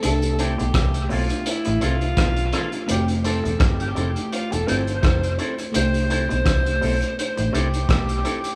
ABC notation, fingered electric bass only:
X:1
M:4/4
L:1/16
Q:"Swing 16ths" 1/4=84
K:C
V:1 name="Fingered electric bass" clef=bass
C,,3 B,,, C,,2 B,,, z2 A,,, C,,2 B,,,2 z2 | F,,,3 E,,, G,,,2 F,,, z2 E,,, G,,,2 F,,,2 z2 | C,,3 B,,, C,,2 B,,, z2 A,,, C,,2 B,,,2 z2 |]